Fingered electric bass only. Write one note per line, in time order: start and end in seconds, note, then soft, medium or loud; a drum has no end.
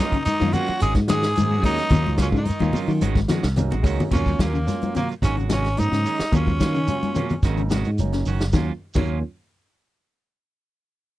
0.42 0.54 F#2 medium
0.69 muted fingered electric bass stroke soft
0.83 0.97 G#1 loud
0.95 1.34 G#2 medium
1.38 1.64 G#2 medium
1.64 1.77 D#2 loud
1.91 2.05 D#2 loud
2.07 2.32 C#2 medium
2.32 2.45 G#2 medium
2.62 2.74 D#2 loud
2.75 muted fingered electric bass stroke soft
2.88 3.01 D#3 medium
3.02 3.28 G#1 medium
3.44 3.70 C2 loud
3.73 3.84 G#1 medium
3.84 3.98 C#2 loud
4.12 4.38 D#2 loud
4.39 4.65 D#2 medium
5.23 5.74 G#1 medium
5.79 5.91 G#2 loud
5.92 6.05 G#2 medium
6.21 muted fingered electric bass stroke soft
6.33 6.59 D#2 loud
6.60 6.86 D#3 medium
7.43 7.82 G#1 loud
7.87 7.99 G#2 medium
8.00 8.25 F#1 medium
8.26 8.52 F#1 medium
8.53 8.69 D#2 medium
8.96 9.22 D#2 medium